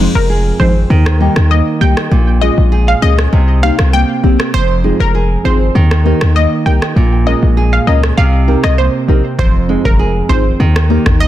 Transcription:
0.00 0.97 F2 medium
0.00 0.12 F3 medium
0.00 0.12 G#3 medium
0.00 0.97 G#3 medium
0.00 0.12 C4 medium
0.00 0.13 D#4 medium
0.15 0.52 F1 loud
0.15 0.27 A#4 medium
0.30 0.97 G#4 medium
0.59 0.85 G#1 loud
0.59 0.72 F3 medium
0.59 0.73 G#3 medium
0.59 0.97 C4 medium
0.59 0.73 C4 medium
0.59 0.73 D#4 medium
0.59 0.73 C5 medium
0.90 1.28 D#2 loud
0.90 2.11 D#3 medium
1.06 cross-stick medium
1.20 1.33 G3 medium
1.20 1.33 A#3 medium
1.20 1.80 D#4 medium
1.20 1.34 D#4 medium
1.20 1.34 G4 loud
1.36 1.62 D#2 medium
1.36 cross-stick medium
1.51 2.41 A#3 medium
1.51 1.64 D#5 medium
1.80 1.94 C2 medium
1.80 1.94 G3 medium
1.80 1.94 A#3 medium
1.80 2.18 D#4 medium
1.80 1.94 D#4 medium
1.80 1.94 G4 medium
1.80 1.94 G5 medium
1.97 cross-stick medium
2.11 2.50 A#1 loud
2.11 3.32 A#2 medium
2.41 3.39 G#3 medium
2.41 2.54 A#3 medium
2.41 2.54 C#4 medium
2.41 2.55 F4 medium
2.41 2.55 G#4 medium
2.41 2.55 D#5 medium
2.58 2.95 A#1 loud
2.72 3.39 G#4 medium
2.88 3.00 F5 medium
3.02 3.27 C#2 loud
3.02 3.15 A#3 medium
3.02 3.15 C#4 medium
3.02 3.39 C#4 medium
3.02 3.15 F4 medium
3.02 3.16 G#4 medium
3.02 3.16 D#5 medium
3.19 cross-stick medium
3.33 3.71 C2 loud
3.33 4.60 C3 medium
3.62 3.75 A#3 medium
3.62 3.76 C4 medium
3.62 4.22 C4 medium
3.62 3.76 D#4 medium
3.62 3.76 G4 medium
3.62 3.76 F5 medium
3.79 4.04 C2 medium
3.79 cross-stick loud
3.93 4.60 A#3 medium
3.93 4.37 G5 medium
4.23 4.37 A#1 medium
4.23 4.36 A#3 medium
4.23 4.36 C4 medium
4.23 4.60 C4 medium
4.23 4.37 D#4 medium
4.23 4.37 G4 medium
4.40 cross-stick medium
4.54 4.92 F1 loud
4.54 5.81 F2 medium
4.54 4.67 C5 loud
4.83 5.81 G#3 medium
4.83 4.97 C4 medium
4.83 4.97 D#4 medium
4.83 4.97 F4 medium
4.83 4.97 G#4 medium
5.00 5.37 F1 loud
5.00 5.12 A#4 medium
5.15 5.82 G#4 medium
5.44 5.70 G#1 medium
5.44 5.57 C4 medium
5.44 5.82 C4 medium
5.44 5.58 D#4 medium
5.44 5.58 F4 medium
5.44 5.58 G#4 medium
5.44 5.58 C5 medium
5.75 6.13 D#2 loud
5.75 6.96 D#3 medium
5.91 cross-stick medium
6.05 6.18 A#3 medium
6.05 6.18 D#4 medium
6.05 6.65 D#4 medium
6.05 6.18 G4 medium
6.05 6.19 A#4 medium
6.21 6.46 D#2 medium
6.21 cross-stick medium
6.36 7.27 A#3 medium
6.36 6.49 D#5 medium
6.66 6.79 C2 medium
6.66 6.79 A#3 medium
6.66 6.79 D#4 medium
6.66 7.03 D#4 medium
6.66 6.79 G4 medium
6.66 6.79 A#4 medium
6.66 6.79 G5 medium
6.82 cross-stick medium
6.96 7.35 A#1 loud
6.96 8.17 A#2 medium
7.26 8.24 G#3 medium
7.26 7.39 C#4 medium
7.26 7.39 F4 medium
7.26 7.40 G#4 medium
7.26 7.40 A#4 medium
7.26 7.40 D#5 medium
7.43 7.79 A#1 loud
7.57 8.24 G#4 medium
7.73 7.85 F5 medium
7.87 8.12 C#2 medium
7.87 8.00 C#4 medium
7.87 8.24 C#4 medium
7.87 8.00 F4 medium
7.87 8.00 G#4 medium
7.87 8.00 A#4 medium
7.87 8.00 D#5 medium
8.03 cross-stick medium
8.17 8.56 C2 loud
8.17 9.45 C3 medium
8.17 8.31 F5 medium
8.47 8.60 C4 medium
8.47 9.07 C4 medium
8.47 8.61 D#4 medium
8.47 8.61 G4 medium
8.47 8.61 A#4 medium
8.64 8.89 C2 medium
8.64 8.76 D#5 medium
8.64 cross-stick medium
8.78 9.45 A#3 medium
8.78 9.22 C5 medium
9.08 9.22 A#1 medium
9.08 9.21 C4 medium
9.08 9.45 C4 medium
9.08 9.21 D#4 medium
9.08 9.21 G4 medium
9.08 9.22 A#4 medium
9.39 9.77 F1 loud
9.39 10.66 F2 medium
9.39 9.52 C5 loud
9.39 kick loud
9.68 10.66 G#3 medium
9.68 9.82 C4 medium
9.68 9.82 D#4 medium
9.68 9.82 F4 medium
9.68 9.82 G#4 medium
9.85 10.22 F1 loud
9.85 9.97 A#4 medium
9.85 kick medium
9.99 10.66 G#4 medium
10.29 10.55 G#1 medium
10.29 10.42 C4 medium
10.29 10.66 C4 medium
10.29 10.42 D#4 medium
10.29 10.42 F4 medium
10.29 10.43 G#4 medium
10.29 10.43 C5 medium
10.29 kick medium
10.60 10.98 D#2 loud
10.60 11.28 D#3 medium
10.76 cross-stick loud
10.89 11.03 A#3 medium
10.89 11.03 D#4 medium
10.89 11.28 D#4 medium
10.89 11.03 G4 medium
10.89 11.03 A#4 loud
11.06 11.28 D#2 medium
11.06 kick medium
11.06 cross-stick medium
11.20 11.28 A#3 medium
11.20 11.28 D#5 medium

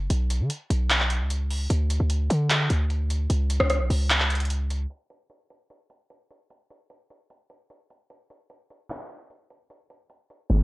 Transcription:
0.10 0.42 B1 loud
0.10 closed hi-hat medium
0.30 closed hi-hat medium
0.40 0.50 D3 loud
0.50 closed hi-hat medium
0.70 1.22 B1 loud
0.70 closed hi-hat medium
0.90 clap loud
0.90 closed hi-hat medium
1.00 clap medium
1.10 closed hi-hat medium
1.20 1.68 C#2 loud
1.30 closed hi-hat medium
1.51 open hi-hat medium
1.70 1.99 D2 loud
1.70 closed hi-hat medium
1.90 closed hi-hat medium
2.00 2.29 D2 loud
2.10 closed hi-hat medium
2.30 2.69 D3 loud
2.30 closed hi-hat medium
2.50 clap loud
2.50 closed hi-hat medium
2.70 3.28 D2 loud
2.70 closed hi-hat medium
2.90 closed hi-hat medium
3.10 closed hi-hat medium
3.30 3.59 C#2 loud
3.30 closed hi-hat medium
3.50 closed hi-hat medium
3.60 3.82 C#2 loud
3.60 cross-stick medium
3.70 cross-stick medium
3.70 closed hi-hat medium
3.80 3.90 B1 loud
3.90 4.86 C#2 loud
3.90 open hi-hat medium
4.10 clap loud
4.10 closed hi-hat medium
4.20 clap medium
4.30 closed hi-hat medium
4.35 closed hi-hat medium
4.40 closed hi-hat medium
4.45 closed hi-hat medium
4.50 closed hi-hat medium
4.70 closed hi-hat medium
4.90 closed hi-hat medium
5.10 closed hi-hat medium
5.30 closed hi-hat medium
5.50 closed hi-hat medium
5.70 closed hi-hat medium
5.90 closed hi-hat medium
6.10 closed hi-hat medium
6.30 closed hi-hat medium
6.50 closed hi-hat medium
6.70 closed hi-hat medium
6.90 closed hi-hat medium
7.10 closed hi-hat medium
7.30 closed hi-hat medium
7.50 closed hi-hat medium
7.70 closed hi-hat medium
7.90 closed hi-hat medium
8.10 closed hi-hat medium
8.30 closed hi-hat medium
8.50 closed hi-hat medium
8.70 closed hi-hat medium
8.90 clap loud
9.10 closed hi-hat medium
9.30 closed hi-hat medium
9.50 closed hi-hat medium
9.70 closed hi-hat medium
9.90 closed hi-hat medium
10.10 closed hi-hat medium
10.30 closed hi-hat medium
10.50 kick loud
10.50 snare medium

